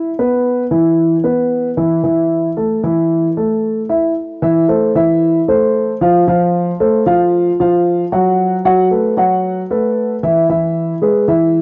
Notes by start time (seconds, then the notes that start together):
0.19 B3 B4
0.71 E3 E4
1.24 B3 B4
1.77 E3 E4
2.03 E3 E4
2.57 A3 A4
2.83 E3 E4
3.37 A3 A4
3.89 E4 E5
4.42 E3 E4 E5
4.68 A3 A4 C5
4.95 E3 E4 E5
5.48 A3 A4 C5
6.01 F3 F4 F5
6.27 F3 F4 F5
6.80 A3 A4 C5
7.06 F3 F4 F5
7.60 F3 F4 F5
8.12 F#3 F#4 F#5
8.65 F#3 F#4 F#5
8.91 A3 A4 B4
9.17 F#3 F#4 F#5
9.70 A3 A4 B4
10.23 E3 E4 E5
10.49 E3 E4 E5
11.02 G#3 G#4 B4
11.28 E3 E4 E5